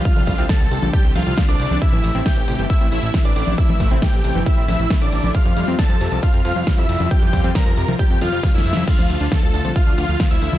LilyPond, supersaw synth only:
\new Staff \with { instrumentName = "Supersaw synth" } { \time 4/4 \key f \major \tempo 4 = 136 <f' f''>4 <a' a''>4 <g' g''>8 <f' f''>8. <d' d''>8. | <e' e''>4 <g' g''>4 <e' e''>8 <e' e''>8. <d' d''>8. | <e' e''>4 <g' g''>4 <e' e''>8 <e' e''>8. <d' d''>8. | <f' f''>4 <a' a''>4 <f' f''>8 <f' f''>8. <e' e''>8. |
<g' g''>4 <bes' bes''>4 <g' g''>8 <f' f''>8. <e' e''>8. | <f' f''>4 <a' a''>4 <f' f''>8 <f' f''>8. <e' e''>8. | }